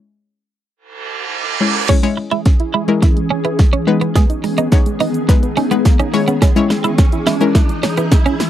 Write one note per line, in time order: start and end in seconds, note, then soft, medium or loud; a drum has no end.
0.00 1.57 G#3 medium
0.00 1.57 C#4 medium
0.00 1.57 E4 medium
0.00 1.57 C#5 medium
0.76 reverse cymbal medium
1.61 1.88 G#3 medium
1.61 1.88 C#4 medium
1.61 1.88 E4 medium
1.61 1.88 C#5 medium
1.89 3.85 E3 medium
1.89 2.01 G#3 medium
1.89 2.01 G#3 loud
1.89 2.01 C#4 medium
1.89 3.85 C#4 medium
1.89 1.97 C#4 medium
1.89 2.01 E4 medium
1.89 3.85 G#4 medium
1.89 2.01 C#5 loud
1.89 kick loud
1.89 snare medium
1.89 closed hi-hat medium
1.89 crash medium
1.89 riser medium
2.03 2.73 G#3 loud
2.03 2.73 C#4 medium
2.03 2.15 C#4 medium
2.03 2.73 E4 medium
2.03 2.73 C#5 loud
2.03 closed hi-hat medium
2.17 muted clean electric guitar stroke soft
2.31 2.43 G#3 medium
2.31 2.40 E4 medium
2.31 closed hi-hat medium
2.45 2.57 C#4 loud
2.45 kick loud
2.45 snare medium
2.45 closed hi-hat medium
2.60 2.72 E4 medium
2.60 closed hi-hat soft
2.74 2.86 G#3 medium
2.74 2.82 E4 medium
2.88 3.81 G#3 medium
2.88 3.81 C#4 medium
2.88 3.00 C#4 medium
2.88 3.81 E4 medium
2.88 3.81 A#4 medium
2.88 closed hi-hat soft
3.02 3.14 E4 medium
3.02 muted clean electric guitar stroke soft
3.02 kick loud
3.02 snare medium
3.02 closed hi-hat medium
3.16 3.28 G#3 medium
3.16 closed hi-hat soft
3.30 3.39 C#4 medium
3.45 3.53 B3 medium
3.45 3.56 E4 medium
3.45 closed hi-hat medium
3.59 3.71 G#3 medium
3.59 kick loud
3.59 snare medium
3.59 closed hi-hat medium
3.73 3.81 C#4 medium
3.73 3.85 C#4 medium
3.73 closed hi-hat soft
3.87 6.11 D#3 medium
3.87 4.57 G#3 medium
3.87 6.11 B3 medium
3.87 4.57 B3 medium
3.87 4.57 D#4 medium
3.87 8.50 G#4 medium
3.87 4.57 B4 loud
3.87 muted clean electric guitar stroke soft
4.01 4.09 B3 medium
4.01 closed hi-hat medium
4.15 4.24 G#3 medium
4.15 4.27 B3 loud
4.15 kick loud
4.15 snare medium
4.15 closed hi-hat medium
4.15 shaker medium
4.30 4.41 D#4 medium
4.30 closed hi-hat medium
4.30 shaker medium
4.44 4.55 G#3 medium
4.44 muted clean electric guitar stroke soft
4.44 open hi-hat medium
4.44 shaker soft
4.58 4.70 B3 medium
4.58 4.66 D#4 medium
4.58 closed hi-hat medium
4.58 shaker medium
4.72 5.18 G#3 medium
4.72 5.18 B3 medium
4.72 4.84 D#4 medium
4.72 5.19 D#4 medium
4.72 5.19 C#5 medium
4.72 kick loud
4.72 snare medium
4.72 closed hi-hat medium
4.72 shaker medium
4.86 4.98 G#3 medium
4.86 closed hi-hat soft
4.86 shaker soft
5.00 5.12 B3 medium
5.00 5.09 D#4 medium
5.00 open hi-hat medium
5.00 shaker medium
5.14 closed hi-hat soft
5.14 shaker medium
5.29 5.63 G#3 medium
5.29 5.63 B3 medium
5.29 5.64 D#4 medium
5.29 5.64 B4 medium
5.29 muted clean electric guitar stroke soft
5.29 kick loud
5.29 snare medium
5.29 closed hi-hat medium
5.29 shaker medium
5.43 5.55 B3 medium
5.43 closed hi-hat soft
5.43 shaker soft
5.57 5.65 C#4 medium
5.57 5.69 D#4 medium
5.57 open hi-hat medium
5.57 shaker medium
5.71 6.12 G#3 medium
5.71 5.83 G#3 medium
5.71 5.79 B3 medium
5.71 6.14 B3 medium
5.71 6.14 D#4 medium
5.71 6.14 B4 medium
5.71 closed hi-hat medium
5.71 shaker medium
5.85 kick loud
5.85 snare medium
5.85 closed hi-hat medium
5.85 shaker medium
5.99 6.08 C#4 medium
5.99 6.11 D#4 medium
5.99 closed hi-hat soft
5.99 shaker soft
6.13 8.50 E3 medium
6.13 6.48 G#3 medium
6.13 6.25 G#3 medium
6.13 8.50 C#4 medium
6.13 6.48 C#4 medium
6.13 6.48 E4 medium
6.13 6.49 C#5 loud
6.13 muted clean electric guitar stroke soft
6.13 open hi-hat medium
6.13 shaker medium
6.28 6.36 B3 medium
6.28 6.39 C#4 medium
6.28 closed hi-hat medium
6.28 shaker medium
6.42 6.54 G#3 loud
6.42 6.50 C#4 medium
6.42 kick loud
6.42 snare medium
6.42 closed hi-hat medium
6.42 shaker medium
6.56 7.25 G#3 loud
6.56 6.68 C#4 medium
6.56 7.26 C#4 medium
6.56 7.26 E4 medium
6.56 7.26 C#5 loud
6.56 closed hi-hat medium
6.56 shaker medium
6.70 muted clean electric guitar stroke soft
6.70 snare medium
6.70 open hi-hat medium
6.70 shaker soft
6.84 6.96 G#3 medium
6.84 6.92 E4 medium
6.84 closed hi-hat medium
6.84 shaker medium
6.98 7.10 C#4 loud
6.98 kick loud
6.98 snare medium
6.98 closed hi-hat medium
6.98 shaker medium
7.12 7.24 E4 medium
7.12 closed hi-hat soft
7.12 shaker soft
7.26 7.38 G#3 medium
7.26 7.35 E4 medium
7.26 snare medium
7.26 open hi-hat medium
7.26 shaker medium
7.41 8.33 G#3 medium
7.41 8.33 C#4 medium
7.41 7.53 C#4 medium
7.41 8.34 E4 medium
7.41 8.34 A#4 loud
7.41 closed hi-hat soft
7.41 shaker medium
7.55 7.67 E4 medium
7.55 muted clean electric guitar stroke soft
7.55 kick loud
7.55 snare loud
7.55 closed hi-hat medium
7.55 shaker medium
7.69 7.81 G#3 medium
7.69 closed hi-hat medium
7.69 shaker soft
7.83 7.91 C#4 medium
7.83 snare medium
7.83 open hi-hat medium
7.83 shaker medium
7.97 8.06 B3 medium
7.97 8.09 E4 medium
7.97 closed hi-hat medium
7.97 shaker medium
8.11 8.23 G#3 medium
8.11 kick loud
8.11 snare loud
8.11 closed hi-hat medium
8.11 shaker medium
8.26 8.34 C#4 medium
8.26 8.38 C#4 medium
8.26 closed hi-hat soft
8.26 shaker soft
8.40 muted clean electric guitar stroke soft
8.40 snare loud
8.40 open hi-hat medium
8.40 shaker medium